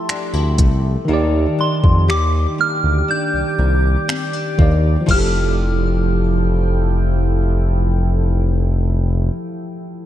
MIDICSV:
0, 0, Header, 1, 7, 480
1, 0, Start_track
1, 0, Key_signature, -1, "major"
1, 0, Tempo, 1000000
1, 521, Time_signature, 4, 2, 24, 8
1, 4828, End_track
2, 0, Start_track
2, 0, Title_t, "Synth bell"
2, 0, Program_c, 0, 98
2, 0, Note_on_c, 0, 84, 82
2, 268, Note_off_c, 0, 84, 0
2, 771, Note_on_c, 0, 84, 70
2, 990, Note_off_c, 0, 84, 0
2, 1011, Note_on_c, 0, 86, 85
2, 1078, Note_off_c, 0, 86, 0
2, 1251, Note_on_c, 0, 89, 90
2, 1491, Note_on_c, 0, 91, 93
2, 1493, Note_off_c, 0, 89, 0
2, 2187, Note_off_c, 0, 91, 0
2, 2452, Note_on_c, 0, 89, 73
2, 4475, Note_off_c, 0, 89, 0
2, 4828, End_track
3, 0, Start_track
3, 0, Title_t, "Ambient pad"
3, 0, Program_c, 1, 92
3, 0, Note_on_c, 1, 67, 72
3, 0, Note_on_c, 1, 76, 67
3, 0, Note_on_c, 1, 81, 83
3, 503, Note_off_c, 1, 67, 0
3, 503, Note_off_c, 1, 76, 0
3, 503, Note_off_c, 1, 81, 0
3, 522, Note_on_c, 1, 67, 74
3, 522, Note_on_c, 1, 74, 68
3, 523, Note_on_c, 1, 86, 84
3, 2422, Note_off_c, 1, 67, 0
3, 2423, Note_off_c, 1, 74, 0
3, 2423, Note_off_c, 1, 86, 0
3, 2440, Note_on_c, 1, 64, 70
3, 2440, Note_on_c, 1, 69, 66
3, 2441, Note_on_c, 1, 53, 73
3, 2441, Note_on_c, 1, 79, 81
3, 4463, Note_off_c, 1, 64, 0
3, 4463, Note_off_c, 1, 69, 0
3, 4464, Note_off_c, 1, 53, 0
3, 4464, Note_off_c, 1, 79, 0
3, 4828, End_track
4, 0, Start_track
4, 0, Title_t, "Tine electric piano"
4, 0, Program_c, 2, 4
4, 0, Control_c, 2, 64, 127
4, 0, Note_on_c, 2, 53, 78
4, 0, Note_on_c, 2, 64, 69
4, 0, Note_on_c, 2, 67, 70
4, 0, Note_on_c, 2, 69, 85
4, 495, Note_off_c, 2, 53, 0
4, 502, Note_off_c, 2, 64, 0
4, 504, Note_on_c, 2, 51, 76
4, 509, Note_off_c, 2, 67, 0
4, 515, Note_off_c, 2, 69, 0
4, 519, Note_on_c, 2, 63, 67
4, 528, Control_c, 2, 64, 0
4, 531, Note_on_c, 2, 67, 70
4, 545, Note_on_c, 2, 74, 85
4, 626, Control_c, 2, 64, 127
4, 2174, Note_off_c, 2, 51, 0
4, 2181, Note_off_c, 2, 63, 0
4, 2187, Note_off_c, 2, 67, 0
4, 2194, Note_off_c, 2, 74, 0
4, 2196, Note_on_c, 2, 51, 56
4, 2204, Note_on_c, 2, 63, 50
4, 2211, Note_on_c, 2, 67, 52
4, 2217, Note_on_c, 2, 74, 60
4, 2404, Note_on_c, 2, 53, 72
4, 2432, Note_on_c, 2, 64, 69
4, 2439, Note_off_c, 2, 51, 0
4, 2443, Note_off_c, 2, 63, 0
4, 2446, Note_off_c, 2, 67, 0
4, 2447, Control_c, 2, 64, 0
4, 2449, Note_off_c, 2, 74, 0
4, 2460, Note_on_c, 2, 67, 66
4, 2487, Note_on_c, 2, 69, 84
4, 2520, Control_c, 2, 64, 127
4, 4427, Note_off_c, 2, 53, 0
4, 4455, Note_off_c, 2, 64, 0
4, 4483, Note_off_c, 2, 67, 0
4, 4510, Note_off_c, 2, 69, 0
4, 4828, End_track
5, 0, Start_track
5, 0, Title_t, "Nylon-string guitar"
5, 0, Program_c, 3, 24
5, 0, Note_on_c, 3, 53, 84
5, 0, Note_on_c, 3, 57, 59
5, 0, Note_on_c, 3, 67, 55
5, 42, Note_on_c, 3, 62, 62
5, 160, Note_off_c, 3, 62, 0
5, 160, Note_on_c, 3, 64, 50
5, 274, Note_off_c, 3, 57, 0
5, 280, Note_on_c, 3, 57, 59
5, 518, Note_off_c, 3, 53, 0
5, 520, Note_on_c, 3, 51, 78
5, 569, Note_off_c, 3, 57, 0
5, 569, Note_off_c, 3, 64, 0
5, 570, Note_off_c, 3, 67, 0
5, 761, Note_on_c, 3, 62, 60
5, 1000, Note_on_c, 3, 67, 63
5, 1240, Note_on_c, 3, 58, 62
5, 1474, Note_off_c, 3, 62, 0
5, 1480, Note_on_c, 3, 62, 61
5, 1715, Note_off_c, 3, 58, 0
5, 1720, Note_on_c, 3, 58, 56
5, 1958, Note_off_c, 3, 62, 0
5, 1960, Note_on_c, 3, 60, 60
5, 2079, Note_off_c, 3, 60, 0
5, 2079, Note_on_c, 3, 62, 49
5, 2194, Note_off_c, 3, 58, 0
5, 2200, Note_on_c, 3, 58, 57
5, 2427, Note_off_c, 3, 51, 0
5, 2429, Note_on_c, 3, 53, 76
5, 2443, Note_off_c, 3, 58, 0
5, 2444, Note_on_c, 3, 57, 80
5, 2455, Note_off_c, 3, 62, 0
5, 2456, Note_on_c, 3, 64, 84
5, 2466, Note_off_c, 3, 67, 0
5, 2468, Note_on_c, 3, 67, 86
5, 4472, Note_off_c, 3, 53, 0
5, 4487, Note_off_c, 3, 57, 0
5, 4499, Note_off_c, 3, 64, 0
5, 4510, Note_off_c, 3, 67, 0
5, 4828, End_track
6, 0, Start_track
6, 0, Title_t, "Analog synth bass"
6, 0, Program_c, 4, 38
6, 161, Note_on_c, 4, 38, 89
6, 283, Note_on_c, 4, 36, 84
6, 290, Note_off_c, 4, 38, 0
6, 464, Note_off_c, 4, 36, 0
6, 522, Note_on_c, 4, 39, 107
6, 704, Note_off_c, 4, 39, 0
6, 882, Note_on_c, 4, 41, 83
6, 1002, Note_on_c, 4, 39, 89
6, 1009, Note_off_c, 4, 41, 0
6, 1184, Note_off_c, 4, 39, 0
6, 1362, Note_on_c, 4, 38, 90
6, 1453, Note_off_c, 4, 38, 0
6, 1601, Note_on_c, 4, 36, 43
6, 1649, Note_off_c, 4, 36, 0
6, 1721, Note_on_c, 4, 36, 87
6, 1903, Note_off_c, 4, 36, 0
6, 2203, Note_on_c, 4, 39, 77
6, 2384, Note_off_c, 4, 39, 0
6, 2441, Note_on_c, 4, 29, 102
6, 4465, Note_off_c, 4, 29, 0
6, 4828, End_track
7, 0, Start_track
7, 0, Title_t, "Drums"
7, 44, Note_on_c, 9, 26, 112
7, 44, Note_on_c, 9, 42, 65
7, 92, Note_off_c, 9, 26, 0
7, 92, Note_off_c, 9, 42, 0
7, 280, Note_on_c, 9, 42, 71
7, 283, Note_on_c, 9, 36, 86
7, 328, Note_off_c, 9, 42, 0
7, 331, Note_off_c, 9, 36, 0
7, 882, Note_on_c, 9, 36, 83
7, 930, Note_off_c, 9, 36, 0
7, 1007, Note_on_c, 9, 26, 107
7, 1055, Note_off_c, 9, 26, 0
7, 1964, Note_on_c, 9, 26, 107
7, 2012, Note_off_c, 9, 26, 0
7, 2202, Note_on_c, 9, 36, 84
7, 2250, Note_off_c, 9, 36, 0
7, 2441, Note_on_c, 9, 36, 92
7, 2441, Note_on_c, 9, 49, 77
7, 2489, Note_off_c, 9, 36, 0
7, 2489, Note_off_c, 9, 49, 0
7, 4828, End_track
0, 0, End_of_file